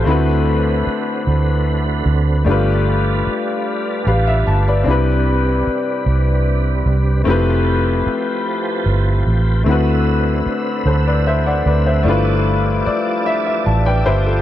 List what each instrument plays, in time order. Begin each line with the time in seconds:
Already playing: tonewheel organ C4, grand piano A4 C5
0.04 fingered electric bass D2, tonewheel organ D3 A3 F#4 B4, grand piano A3 C4 E4
0.09 grand piano F#4 B4
0.87 muted fingered electric bass stroke
1.27 fingered electric bass D2
2.06 fingered electric bass D2
2.44 fingered electric bass G1, tonewheel organ G3 D4 F4 A4 B4, grand piano A3 D4 G4
2.49 grand piano F4 B4
3.27 muted fingered electric bass stroke
4.07 fingered electric bass A1, grand piano G4 B4 F5
4.27 grand piano E5
4.47 fingered electric bass G1, grand piano A5
4.68 grand piano B4 D5
4.84 fingered electric bass C2, tonewheel organ C3 B4, grand piano C4 D4 E4
4.89 grand piano G4 B4
5.67 muted fingered electric bass stroke
6.06 fingered electric bass C2
6.86 fingered electric bass C2
7.24 fingered electric bass F1, tonewheel organ F3 C4 G4 A4 B4, grand piano A3 C4 E4
7.29 grand piano G4 B4
8.06 muted fingered electric bass stroke
8.86 fingered electric bass G1
9.27 fingered electric bass A1
9.64 fingered electric bass D2, tonewheel organ D3 A3 F#4 B4 E5, grand piano A3 C4 E4
9.69 grand piano F#4 B4
10.46 muted fingered electric bass stroke
10.86 fingered electric bass D2, grand piano A4 C5
11.07 grand piano B4 D5
11.27 grand piano C5 E5
11.46 grand piano D5 F#5
11.66 fingered electric bass D2, grand piano B4 D5
11.86 grand piano C5 E5
12.03 fingered electric bass G1, tonewheel organ F3 G3 D4 A4 D5, grand piano A3 D4 E4
12.08 grand piano F4 B4
12.86 grand piano D5, muted fingered electric bass stroke
13.26 grand piano E5
13.46 grand piano E5
13.66 fingered electric bass A1, grand piano A5
13.86 grand piano B4 D5 G5
14.06 fingered electric bass G1, grand piano G4 B4 C5 E5
14.26 grand piano F4 A4